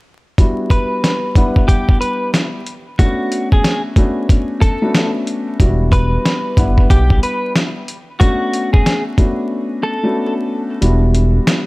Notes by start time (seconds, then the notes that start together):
0.38 G3 B3 D4 E4 F#4, kick, closed hi-hat
0.70 B4, kick, closed hi-hat
1.04 snare, closed hi-hat
1.35 G3 B3 D4 E4 F#5, kick, closed hi-hat
1.56 kick
1.68 G4, kick, closed hi-hat
1.89 kick
2.01 B4, closed hi-hat
2.34 snare, closed hi-hat
2.66 closed hi-hat
2.99 A3 B3 C#4 D4 F#4, kick, closed hi-hat
3.32 closed hi-hat
3.52 G#4, kick
3.64 snare, closed hi-hat
3.96 A3 B3 C#4 D4 F#4, kick, closed hi-hat
4.29 kick, closed hi-hat
4.61 A4, kick, closed hi-hat
4.82 A3 B3 C#4 D4 F#4
4.95 snare, closed hi-hat
5.27 closed hi-hat
5.60 E1 G3 B3 D4 E4 F#4, kick, closed hi-hat
5.92 B4, kick, closed hi-hat
6.25 snare, closed hi-hat
6.57 G1 G3 B3 D4 E4 F#5, kick, closed hi-hat
6.78 kick
6.90 B1 G4, kick, closed hi-hat
7.10 kick
7.23 B4, closed hi-hat
7.56 snare, closed hi-hat
7.88 closed hi-hat
8.20 A3 B3 C#4 D4 F#4, kick, closed hi-hat
8.54 closed hi-hat
8.73 G#4, kick
8.86 snare, closed hi-hat
9.18 A3 B3 C#4 D4 F#4, kick, closed hi-hat
9.83 A4
10.03 A3 B3 C#4 D4 F#4
10.81 E1 G3 B3 D4 E4 F#4, closed hi-hat
11.15 closed hi-hat
11.47 snare, closed hi-hat